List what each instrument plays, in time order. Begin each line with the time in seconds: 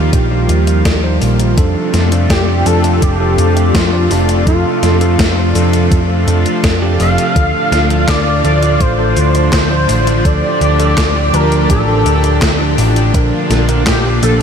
Already playing: analog synth pad D#3 F3 G3 A#3 F4, tine electric piano F3 D#4 G4
0.13 picked electric bass A#1, kick, closed hi-hat, shaker
0.31 tine electric piano F3 D#4 G4
0.49 picked electric bass D#2, closed hi-hat, shaker
0.67 closed hi-hat, shaker
0.85 kick, snare, closed hi-hat, shaker
1.04 tine electric piano F3 D#4 C5
1.22 picked electric bass A#1, open hi-hat, shaker
1.40 closed hi-hat, shaker
1.57 picked electric bass F2, analog synth pad C3 A3 D4 F4, tine electric piano F3 D4 A4, kick, closed hi-hat, shaker
1.94 picked electric bass F2, snare, closed hi-hat, shaker
2.12 tine electric piano F3 D4 A4, closed hi-hat, shaker
2.30 analog synth lead G4, kick, snare, closed hi-hat, shaker
2.66 picked electric bass F2, tine electric piano F3 D4 A4, analog synth lead A4, closed hi-hat, shaker
2.84 closed hi-hat, shaker
3.02 picked electric bass F1, analog synth lead G4, kick, closed hi-hat, shaker
3.20 tine electric piano F3 D4 A4
3.38 picked electric bass F2, closed hi-hat, shaker
3.57 closed hi-hat, shaker
3.74 picked electric bass F2, analog synth lead F4, kick, snare, closed hi-hat, shaker
3.93 tine electric piano F3 D4 D5
4.11 picked electric bass F1, analog synth lead D4, open hi-hat, shaker
4.29 closed hi-hat, shaker
4.47 picked electric bass F2, tine electric piano F3 D4 A4, analog synth lead F4, kick, closed hi-hat, shaker
4.83 picked electric bass F2, snare, closed hi-hat, shaker
5.01 tine electric piano F3 D4 A4, closed hi-hat, shaker
5.19 kick, snare, closed hi-hat, shaker
5.55 picked electric bass F2, tine electric piano F3 D4 A4, closed hi-hat, shaker
5.73 closed hi-hat, shaker
5.91 picked electric bass F2, kick, closed hi-hat, shaker
6.10 tine electric piano F3 D4 A4
6.28 picked electric bass F2, closed hi-hat, shaker
6.46 closed hi-hat, shaker
6.64 picked electric bass F2, kick, snare, closed hi-hat, shaker
6.82 tine electric piano F3 D4 G4
7.00 picked electric bass F1, analog synth lead F5, open hi-hat, shaker
7.18 closed hi-hat, shaker
7.36 picked electric bass D2, analog synth pad A2 D3, tine electric piano F3 D4 A4, kick, closed hi-hat, shaker
7.72 picked electric bass D2, snare, closed hi-hat, shaker
7.90 tine electric piano F3 D4 A4, closed hi-hat, shaker
8.08 picked electric bass D2, analog synth lead D5, kick, snare, clap, closed hi-hat, shaker
8.44 picked electric bass D2, tine electric piano F3 D4 A4, analog synth lead D5, closed hi-hat, shaker
8.63 closed hi-hat, shaker
8.80 picked electric bass A1, analog synth lead C5, kick, closed hi-hat, shaker
8.99 tine electric piano F3 D4 A4
9.17 picked electric bass D2, closed hi-hat, shaker
9.35 closed hi-hat, shaker
9.53 picked electric bass D2, analog synth lead C5, kick, snare, clap, closed hi-hat, shaker
9.71 tine electric piano F3 D4 D5
9.89 picked electric bass A1, open hi-hat, shaker
10.07 closed hi-hat, shaker
10.25 picked electric bass D2, tine electric piano F3 D4 A4, analog synth pad G4, analog synth lead D5, kick, closed hi-hat, shaker
10.61 picked electric bass D2, closed hi-hat, shaker
10.79 tine electric piano F3 D4 A4, closed hi-hat, shaker
10.97 kick, snare, clap, closed hi-hat, shaker
11.34 picked electric bass D2, tine electric piano F3 D4 A5, analog synth lead A#4, closed hi-hat, shaker
11.52 closed hi-hat, shaker
11.70 picked electric bass A1, analog synth lead A4, kick, closed hi-hat, shaker
11.88 tine electric piano F3 D4 A4
12.06 picked electric bass D2, closed hi-hat, shaker
12.24 closed hi-hat, shaker
12.42 picked electric bass D2, kick, snare, clap, closed hi-hat, shaker
12.60 tine electric piano F3 D4 D5
12.78 picked electric bass A1, open hi-hat, shaker
12.96 closed hi-hat, shaker
13.14 picked electric bass A#1, analog synth pad A#2 F3 F4, tine electric piano F3 D4 A#4, kick, closed hi-hat, shaker
13.50 picked electric bass A#1, snare, closed hi-hat, shaker
13.69 tine electric piano F3 D4 A#4, closed hi-hat, shaker
13.86 picked electric bass A#1, analog synth lead G4, kick, snare, clap, closed hi-hat, shaker
14.23 picked electric bass A#1, tine electric piano F3 A#3 D4, analog synth lead A4, closed hi-hat, shaker